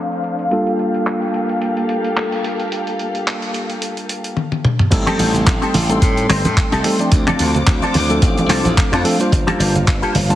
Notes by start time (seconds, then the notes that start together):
Already playing: F3 A3 C4 D4 A4 C5 F5
0.12 closed hi-hat
0.24 closed hi-hat
0.39 closed hi-hat
0.51 G3 A#3 D4 F4 G4 A4, closed hi-hat
0.67 closed hi-hat
0.79 closed hi-hat
0.94 closed hi-hat
1.06 clap, closed hi-hat
1.22 closed hi-hat
1.34 closed hi-hat
1.49 closed hi-hat
1.62 closed hi-hat
1.77 closed hi-hat
1.89 closed hi-hat
2.04 closed hi-hat
2.17 clap, closed hi-hat
2.32 closed hi-hat
2.44 closed hi-hat
2.60 closed hi-hat
2.72 closed hi-hat
2.87 closed hi-hat
2.99 closed hi-hat
3.15 closed hi-hat
3.27 clap, closed hi-hat
3.42 closed hi-hat
3.54 closed hi-hat
3.70 closed hi-hat
3.82 closed hi-hat
3.97 closed hi-hat
4.09 closed hi-hat
4.24 closed hi-hat
4.37 high tom
4.52 high tom
4.65 mid tom
4.79 mid tom
4.91 A1 G3 A3 C4 D#4 A4 G5 C6, kick, closed hi-hat, crash, muted conga, maracas
5.06 C4 D#4 G4 A4, finger snap, closed hi-hat, high conga, maracas
5.19 A1, open hi-hat
5.33 closed hi-hat, low conga, maracas
5.46 A1, kick, clap, closed hi-hat, muted conga, maracas
5.61 C4 D#4 G4 A4, closed hi-hat, maracas
5.74 A1, open hi-hat, high conga, low conga
5.89 G3 A3 C4 D#4 A4, muted clean electric guitar stroke, closed hi-hat, muted conga, maracas
6.02 A2, kick, closed hi-hat, maracas
6.17 closed hi-hat, maracas
6.29 G1 C4 D#4 G4 C5, finger snap, open hi-hat
6.45 A2, closed hi-hat, muted conga, high conga, maracas
6.57 kick, clap, closed hi-hat, maracas
6.71 C2 C4 D#4 G4 A4, closed hi-hat, maracas
6.84 G3 A3 C4 D#4 A4, finger snap, open hi-hat, muted conga
6.98 F3 A3 C4 D4 D5, muted clean electric guitar stroke, closed hi-hat, maracas
7.12 D2 C5 F5 D6, kick, closed hi-hat, maracas
7.27 C4 D4 F4 A4, finger snap, closed hi-hat, high conga, low conga, maracas
7.39 D2, open hi-hat, muted conga
7.55 closed hi-hat, low conga, maracas
7.67 D2, kick, clap, closed hi-hat, maracas
7.82 C4 D4 F4 A4, closed hi-hat, muted conga, maracas
7.94 D2, open hi-hat, high conga, low conga
8.09 F3 A3 C4 D4 A4, muted clean electric guitar stroke, closed hi-hat, maracas
8.22 A1, kick, closed hi-hat, maracas
8.38 closed hi-hat, muted conga, maracas
8.49 C2 C4 D4 F4 A4, finger snap, clap, open hi-hat
8.65 A1, closed hi-hat, high conga, maracas
8.77 kick, clap, closed hi-hat, muted conga, maracas
8.92 F2 C4 D4 F4 A4, finger snap, closed hi-hat, maracas
9.04 F3 A3 C4 D4 A4, open hi-hat
9.19 G3 A#3 D4 F4 C5, muted clean electric guitar stroke, closed hi-hat, maracas
9.32 G1, kick, closed hi-hat, muted conga, maracas
9.47 A#3 F4 G4 A4, finger snap, closed hi-hat, high conga, maracas
9.59 G1, open hi-hat
9.75 closed hi-hat, muted conga, low conga, maracas
9.87 G1, kick, clap, closed hi-hat, maracas
10.02 A#3 F4 G4 A4, closed hi-hat, maracas
10.15 G1, open hi-hat, high conga, low conga
10.29 G3 A#3 D4 F4 A5, muted clean electric guitar stroke, closed hi-hat, muted conga, maracas